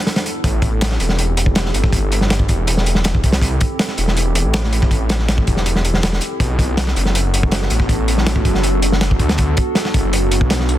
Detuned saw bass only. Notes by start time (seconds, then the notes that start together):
0.44 A1
1.00 E1
1.75 G1
2.49 E1
3.24 C2
3.98 E1
4.45 A1
5.48 E1
5.94 E1
6.40 B1
6.96 F#1
7.71 A1
8.45 F#1
9.19 D2
9.94 F#1
10.41 B1